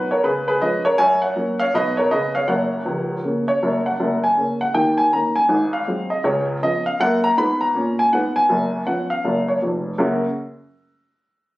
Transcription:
0.11 0.24 A#4 medium
0.11 0.23 C#5 medium
0.24 0.56 C#3 medium
0.24 0.46 G#4 medium
0.24 0.44 B4 medium
0.48 0.62 G#4 medium
0.48 0.60 B4 medium
0.62 0.82 F3 soft
0.62 0.83 G#3 soft
0.62 0.83 C#4 medium
0.62 0.84 B4 medium
0.62 0.82 D#5 medium
0.85 0.99 A#4 medium
0.85 0.97 C#5 medium
0.98 1.31 F#2 medium
0.98 1.22 C#5 medium
0.98 1.19 G#5 loud
1.22 1.58 C#5 medium
1.22 1.54 F#5 medium
1.36 1.57 F#3 soft
1.36 1.57 A#3 medium
1.36 1.57 C#4 soft
1.59 1.74 C#5 medium
1.59 1.72 F5 loud
1.74 2.06 B2 medium
1.74 1.95 F#3 soft
1.74 1.95 B3 soft
1.74 1.96 D#4 medium
1.74 1.97 B4 medium
1.74 1.95 D#5 loud
1.97 2.12 A#4 medium
1.97 2.09 C#5 medium
2.11 2.32 C#3 medium
2.11 2.33 B3 soft
2.11 2.33 C#4 soft
2.11 2.34 B4 medium
2.11 2.31 D#5 loud
2.35 2.48 C#5 medium
2.35 2.47 F5 medium
2.48 2.79 F#1 medium
2.48 2.78 F#2 medium
2.48 3.47 C#5 medium
2.48 3.44 F#5 medium
2.86 3.16 C#1 medium
2.86 3.16 C#2 medium
3.25 3.45 C#3 soft
3.25 3.46 A#3 soft
3.25 3.46 C#4 soft
3.48 3.80 C#5 medium
3.63 3.93 F#1 medium
3.63 3.92 F#2 medium
3.86 4.18 F#5 medium
4.00 4.32 F#1 medium
4.00 4.32 F#2 medium
4.24 4.55 G#5 medium
4.38 4.58 C#3 soft
4.38 4.58 A#3 soft
4.38 4.58 C#4 soft
4.61 4.73 F#5 medium
4.74 5.06 D#2 medium
4.74 5.06 D#3 medium
4.74 4.94 G5 medium
4.98 5.10 G#5 medium
5.13 5.33 D#3 soft
5.13 5.33 A#3 soft
5.13 5.34 C#4 soft
5.13 5.33 A#5 medium
5.36 5.67 G#5 medium
5.49 5.81 G#1 medium
5.49 5.81 G#2 medium
5.73 6.05 F5 medium
5.87 6.08 F#3 soft
5.87 6.08 G#3 soft
5.87 6.09 C4 soft
6.10 6.22 D#5 medium
6.24 6.56 C#2 medium
6.24 6.56 C#3 medium
6.24 6.44 C#5 medium
6.62 6.83 F3 soft
6.62 6.84 B3 soft
6.62 6.84 C#4 soft
6.62 6.83 D#5 medium
6.86 6.98 F5 medium
7.00 7.30 F#2 medium
7.00 7.31 A#3 medium
7.00 7.20 F#5 loud
7.24 7.36 A#5 loud
7.37 7.67 G#2 medium
7.37 7.68 B3 medium
7.37 7.57 B5 medium
7.61 7.93 A#5 medium
7.75 8.05 A#2 medium
7.75 8.06 C#4 medium
7.99 8.11 G#5 medium
8.13 8.43 G#2 medium
8.13 8.44 B3 medium
8.13 8.32 F#5 medium
8.36 8.80 G#5 medium
8.49 8.81 F#1 medium
8.49 8.81 F#2 medium
8.87 9.07 F3 soft
8.87 9.07 B3 soft
8.87 9.08 C#4 soft
8.87 9.07 F#5 medium
9.10 9.42 F5 medium
9.25 9.56 F#1 medium
9.25 9.57 F#2 medium
9.48 9.60 C#5 medium
9.62 9.92 F1 medium
9.62 9.92 F2 soft
9.98 10.23 F#2 medium
9.98 10.24 C#3 medium
9.98 10.24 A#3 medium
9.98 10.24 C#4 medium
9.98 10.24 F#4 medium
9.98 10.25 A#4 medium
9.98 10.25 F#5 soft

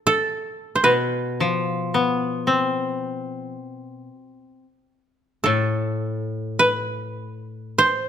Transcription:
0.07 1.97 A4 medium
0.76 0.90 C5 soft
0.84 4.07 B2 soft
0.84 3.32 B4 medium
1.40 3.55 F3 soft
1.94 4.10 B3 soft
2.47 4.64 C4 soft
5.44 8.09 A2 soft
5.44 7.34 A4 soft
6.59 7.84 B4 medium
7.78 8.09 C5 medium

